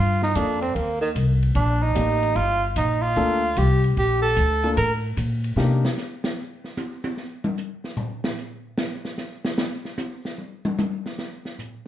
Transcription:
Already playing: G2 F4
0.22 D#4, snare
0.35 F2 A#3 D4 F4 A4, kick, hi-hat pedal, ride
0.62 C4, ride
0.75 D#2 A#3, kick, ride
1.01 D#3
1.15 C2, kick, hi-hat pedal, ride
1.43 ride
1.55 A#1 D4, kick, ride
1.82 D#4
1.95 A1 A#3 D#4 G4 D5, kick, hi-hat pedal, ride
2.23 ride
2.35 G1 F4, kick, ride
2.76 A#1 D#4, kick, hi-hat pedal, ride
3.02 F4
3.16 D2 A#3 D4 F4 A4, kick, ride
3.56 C2 G4, kick, hi-hat pedal, ride
3.84 ride
3.97 A#1 G4, kick, ride
4.22 A4
4.36 D2, kick, hi-hat pedal, ride
4.64 A#3 D4 F4 A4, ride
4.77 A2 A#4, kick, ride
5.17 A#2, kick, hi-hat pedal, ride
5.44 ride
5.56 C3 A#3 D4 D#4 G4, snare
5.85 snare
5.97 snare, hi-hat pedal
6.24 snare
6.64 snare
6.77 hi-hat pedal, high tom
7.04 high tom
7.17 snare
7.44 mid tom
7.57 hi-hat pedal
7.84 snare
7.97 floor tom
8.24 snare
8.37 hi-hat pedal
8.78 snare
9.05 snare
9.18 snare, hi-hat pedal
9.45 snare
9.58 snare
9.85 snare
9.98 hi-hat pedal, high tom
10.25 snare
10.38 mid tom
10.65 mid tom
10.79 hi-hat pedal, mid tom
11.06 snare
11.18 snare
11.45 snare
11.59 floor tom, hi-hat pedal

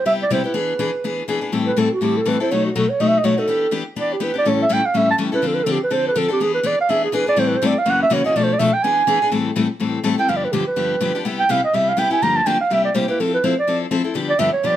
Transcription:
0.05 C3 G3 B3 E4 G4 E5
0.23 D5
0.30 C3 G3 B3 E4 G4 C5
0.44 E4 G4 B4
0.54 E3 B3 D4 G#4
0.79 E3 B3 D4 G#4
1.04 E3 B3 D4 G#4
1.28 E3 B3 D4 G#4
1.41 B3 D4 G#4
1.52 A2 E3 G3 C4 E4 A4
1.67 B4
1.76 A2 E3 G3 C4 E4 A4
1.93 F#4
2.01 A2 E3 G3 C4 E4 G4 A4
2.17 A4
2.25 A2 E3 G3 C4 E4 A4 B4
2.40 G3 C4 E4 A4 C5
2.51 B2 F#3 A3 D#4 F#4 C#5
2.66 F#4
2.76 B2 F#3 A3 D#4 F#4 A4
2.89 C#5
3.00 B2 F#3 A3 D#4 F#4 D#5
3.08 E5
3.18 D#5
3.24 B2 F#3 A3 D#4 F#4 C#5
3.37 A3 D#4 F#4 A4
3.48 E3 B3 D4 G4
3.71 E3 B3 D4 G4
3.96 E3 B3 D4 G4 D5
4.13 G4
4.20 E3 B3 D4 G4 B4
4.34 B3 D4 G4
4.38 D5
4.45 A2 E3 G3 C#4 E4 A4 C#5
4.62 E5
4.69 A2 E3 G3 C#4 E4 A4 G5
4.86 F5
4.94 A2 E3 G3 C#4 E4 A4 E5
5.11 A5
5.18 A2 E3 G3 C#4 E4 A4
5.32 G3 C#4 E4 A4 B4
5.42 D3 F3 C4 D4 A4
5.47 A4
5.55 B4
5.64 D3 F3 C4 D4 A4
5.72 G4
5.84 B4
5.90 D3 F3 C4 D4 A4 C5
6.08 B4
6.15 D3 F3 C4 D4 A4
6.28 C4 D4 A4
6.33 G4
6.40 E3 B3 D4 G#4
6.54 B4
6.63 E3 B3 D4 G#4 D5
6.81 F5
6.89 E3 B3 D4 G#4 E5
7.04 G#4
7.12 E3 B3 D4 G#4 B4
7.26 B3 D4 G#4 D5
7.36 A2 E3 G3 C4 E4 A4 C5
7.47 B4
7.56 C5
7.62 A2 E3 G3 C4 E4 A4
7.66 D5
7.78 F5
7.86 F#2 C#3 E3 A#3 C#4 F#4
7.90 F#5
8.03 E5
8.10 F#2 C#3 E3 A#3 C#4 F#4 C#5
8.24 E3 A#3 C#4 F#4 D#5
8.36 B2 F3 A3 D4 A4 D5
8.44 C5
8.53 D5
8.59 B2 F3 A3 D4 A4 E5
8.73 G5
8.83 E3 B3 D4 G#4 G#5
9.07 E3 B3 D4 G#4
9.22 B3 D4 G#4
9.31 A2 E3 G3 C4 E4 A4
9.56 A2 E3 G3 C4 E4 A4
9.80 A2 E3 G3 C4 E4 A4
10.03 A2 E3 G3 C4 E4 A4
10.18 G3 C4 E4 A4 G5
10.28 G2 D3 F3 B3 D4 G4 F5
10.37 D5
10.45 B4
10.52 G2 D3 F3 B3 D4 G4
10.67 B4
10.76 G2 D3 F3 B3 D4 G4
11.00 G2 D3 F3 B3 D4 G4
11.15 F3 B3 D4 G4
11.25 C3 G3 B3 E4 G4
11.39 G5
11.49 C3 G3 B3 E4 G4 F5
11.65 D#5
11.73 C3 G3 B3 E4 G4 E5
11.89 F5
11.97 C3 G3 B3 E4 G4 G5
12.10 B3 E4 G4 G#5
12.22 G2 D3 F3 A#3 D4 G4 A#5
12.36 A5
12.46 G2 D3 F3 A#3 D4 G4 G5
12.61 F5
12.70 C3 G3 A#3 E4 G4 E5
12.85 D5
12.94 C3 G3 A#3 E4 G4 C5
13.08 A#3 E4 G4 B4
13.20 F3 C4 E4 A4
13.34 B4
13.44 F3 C4 E4 A4 C5
13.59 D5
13.67 F3 C4 E4 A4
13.91 F3 C4 E4 A4
14.04 C4 E4 A4
14.14 G2 D3 F3 B3 D4 G4
14.30 D5
14.39 G2 D3 F3 B3 D4 G4 E5
14.53 C#5
14.63 G2 D3 F3 B3 D4 G4 D5

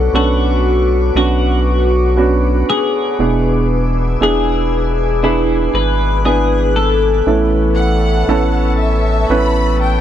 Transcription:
Already playing: B3 C#4 D4 F#4 A4 B4 F#5 C#6 D6
0.13 B1 B3 C#4 D4 F#4 A4
1.15 B1 B3 C#4 D4 F#4
2.17 B3 C#4 D4 F#4
2.70 G#4
3.19 E1 B2 B3 D4 E4 G#4 G#5 E6
4.21 E1 B3 D4 E4 G#4
5.23 B3 D4 E4 G#4 F#6
5.74 G#1 B4
6.25 B3 D4 E4 G#4 B4
6.76 A4
7.26 A1 A2 E3 B3 C#4 E4 A4 A5 C#6 E6
7.76 F#5
8.28 A1 B3 C#4 E4 A4
8.80 E5
9.29 A1 B3 C#4 E4 B4 B5
9.82 G5

